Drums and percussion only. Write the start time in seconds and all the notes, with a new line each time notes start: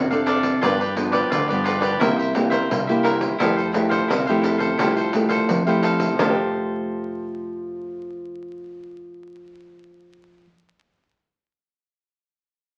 0.11 pandeiro
0.27 pandeiro
0.43 pandeiro
0.63 pandeiro
0.81 pandeiro
0.97 pandeiro
1.13 pandeiro
1.32 pandeiro
1.50 pandeiro
1.66 pandeiro
1.82 pandeiro
2.01 pandeiro
2.19 pandeiro
2.35 pandeiro
2.52 pandeiro
2.71 pandeiro
2.89 pandeiro
3.04 pandeiro
3.21 pandeiro
3.40 pandeiro
3.59 pandeiro
3.74 pandeiro
3.91 pandeiro
4.10 pandeiro
4.27 pandeiro
4.44 pandeiro
4.60 pandeiro
4.79 pandeiro
4.97 pandeiro
5.13 pandeiro
5.29 pandeiro
5.49 pandeiro
5.67 pandeiro
5.83 pandeiro
6.00 pandeiro
6.19 pandeiro